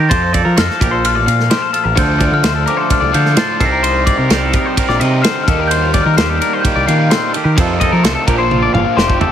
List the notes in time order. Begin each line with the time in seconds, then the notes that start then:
Already playing: G4
0.09 F2 F3 G4 C5 A6, kick, ride
0.22 A4
0.33 A4 D5, kick, ride
0.45 F3 A#4
0.57 F2 C5 F6, snare, ride
0.69 A4, snare
0.80 A#1 A#2 G4 A#4, kick, ride
0.91 A4 C5
1.05 F4 F6, ride
1.15 A1 D5
1.26 A#2 F5, ride
1.40 snare
1.50 F3 G4 C5 F6, snare, ride
1.62 A4
1.73 F4 A4 F6, ride
1.84 A1 A#4
1.96 D2 D3 F3 A3 A4 C5 G6, kick, ride
2.00 D4
2.19 F4 D5, kick, ride
2.32 D3 A#4 F6
2.43 D2 C5, snare, ride
2.55 A4
2.66 F3 G4 A#4 D6, ride
2.77 A4 C5
2.90 D4 F6, kick, ride
3.00 C2 F4 D5
3.12 D3 F3 A3 D4 A4 F5 G6, ride
3.16 D3
3.26 snare
3.36 A2 D3 F3 A3 D4 F4 C5 A6, snare, ride
3.59 C2 C3 G3 C4 D#4 A4 A#4 C7, kick, ride
3.66 A#6
3.72 A#4 C7
3.83 D#4 C5, ride
4.06 D5, kick, ride
4.18 C3 A#4
4.30 C2 G3 A#4 C5, snare, ride
4.42 A4
4.53 D#4 A#4, kick, ride
4.66 C5
4.77 C3 G3 C4 D#4 A#4, kick, ride
4.89 A#1 D5, snare
5.00 C3 G3 C4 D#4 D#5, ride
5.05 C3
5.22 C5 F6, snare, ride
5.27 D3
5.44 D#2 D#3 G3 A4 F6
5.48 D#3 A#3 D#4 G4, kick, ride
5.59 A#4
5.67 D4 C5 G6, ride
5.82 F4
5.94 D5, kick, ride
6.02 D#3 A#4 F6
6.14 D#2 C5 F6, ride
6.18 G3 G4, snare
6.30 A4
6.41 D4 A#4, ride
6.53 F4 C5
6.61 D#3 G6, kick, ride
6.65 G3 A#3 D#4 G4
6.76 C2 D5
6.86 A#2 D#3 G3 A#3 D4 D#4 F5, ride
6.91 D#3
6.99 F4
7.10 C4 C5, snare, ride
7.33 D#3 A4, ride
7.37 G4
7.44 D#3 A#4
7.56 F2 C3 D#3 F3 A3 C5, kick, ride
7.60 D#4 A4
7.80 A4 D#5, kick, ride
7.92 F3 A#4
8.04 C2 C5, snare, ride
8.15 A4
8.27 A#1 A#2 F3 A#3 D4 G4 A#4, kick, ride
8.38 A4 C5
8.51 F4, high tom
8.62 A1 D5
8.73 G1 F5, mid tom
8.97 F1 F2 C3 D#3 F3 A3 C4 G4 C5, snare
9.10 kick
9.21 G4 A4, floor tom